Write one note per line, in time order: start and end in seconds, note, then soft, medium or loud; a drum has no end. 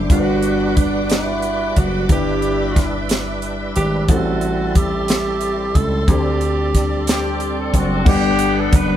0.00 0.12 D3 medium
0.00 0.11 G3 medium
0.00 0.10 D4 medium
0.00 0.11 D4 medium
0.00 0.11 E4 soft
0.00 0.11 E4 medium
0.00 0.14 G4 medium
0.00 0.11 C5 medium
0.00 4.05 D6 medium
0.09 1.72 G1 medium
0.09 1.07 G2 medium
0.09 2.06 G3 soft
0.09 2.07 G3 medium
0.09 2.05 D4 medium
0.09 2.06 D4 soft
0.09 2.06 F#4 soft
0.09 0.78 F#4 medium
0.09 2.07 F#4 soft
0.09 2.06 B4 medium
0.09 4.04 D5 medium
0.09 2.07 F#5 medium
0.09 4.04 B5 medium
0.09 kick medium
0.09 closed hi-hat medium
0.13 0.18 A#4 soft
0.20 2.10 B4 medium
0.43 closed hi-hat soft
0.77 1.12 D4 medium
0.77 kick medium
0.77 closed hi-hat medium
1.10 1.79 E4 medium
1.10 snare medium
1.10 closed hi-hat medium
1.42 closed hi-hat soft
1.76 2.07 F#1 medium
1.76 2.10 F#4 medium
1.76 kick medium
1.76 closed hi-hat soft
2.09 3.71 G1 medium
2.09 3.05 G2 medium
2.09 4.04 G3 medium
2.09 4.04 D4 medium
2.09 4.04 D4 soft
2.09 4.04 E4 soft
2.09 4.05 E4 soft
2.09 4.05 G4 soft
2.09 3.06 G4 medium
2.09 4.04 B4 medium
2.09 4.06 B4 medium
2.09 4.07 E5 medium
2.09 kick loud
2.09 closed hi-hat medium
2.42 closed hi-hat soft
2.76 kick medium
2.76 snare soft
2.76 closed hi-hat medium
3.09 snare medium
3.09 closed hi-hat medium
3.42 closed hi-hat soft
3.76 4.06 G#1 medium
3.76 4.11 G4 medium
3.76 closed hi-hat soft
4.08 5.70 A1 medium
4.08 5.05 A2 medium
4.08 6.03 G3 medium
4.08 6.04 G3 soft
4.08 6.04 C4 medium
4.08 6.03 E4 medium
4.08 6.04 E4 medium
4.08 4.78 F#4 medium
4.08 6.04 A4 medium
4.08 6.05 A4 medium
4.08 6.06 E5 medium
4.08 8.03 A5 medium
4.08 8.04 C6 medium
4.08 kick medium
4.08 closed hi-hat medium
4.41 closed hi-hat soft
4.75 5.77 G4 medium
4.75 kick medium
4.75 closed hi-hat medium
5.08 snare medium
5.08 closed hi-hat medium
5.41 closed hi-hat soft
5.75 6.06 C#2 medium
5.75 6.11 A4 medium
5.75 kick medium
5.75 closed hi-hat soft
6.07 7.70 D2 medium
6.07 7.04 D3 medium
6.07 6.15 F#3 soft
6.07 8.03 G3 soft
6.07 8.02 C4 medium
6.07 8.03 C4 soft
6.07 8.03 D4 soft
6.07 8.03 D4 medium
6.07 7.74 G4 medium
6.07 8.03 A4 medium
6.07 8.04 D5 medium
6.07 kick loud
6.07 closed hi-hat medium
6.11 8.04 G3 medium
6.11 8.04 A4 medium
6.41 closed hi-hat soft
6.75 kick medium
6.75 snare soft
6.75 closed hi-hat medium
7.07 8.03 C4 medium
7.07 7.54 G4 medium
7.07 snare loud
7.07 closed hi-hat medium
7.40 closed hi-hat soft
7.59 7.73 A4 medium
7.74 8.04 F#1 medium
7.74 8.07 F#4 medium
7.74 kick medium
7.74 closed hi-hat soft
8.05 8.69 G1 medium
8.05 8.97 G3 medium
8.05 8.97 B3 medium
8.05 8.97 D4 medium
8.05 8.97 G4 medium
8.05 8.56 G4 medium
8.05 8.12 A#4 medium
8.05 8.97 F#5 medium
8.05 kick loud
8.05 crash medium
8.11 8.97 B4 medium
8.39 closed hi-hat soft
8.57 8.73 A4 medium
8.73 8.97 F#1 medium
8.73 8.97 B4 medium
8.73 kick medium
8.73 closed hi-hat medium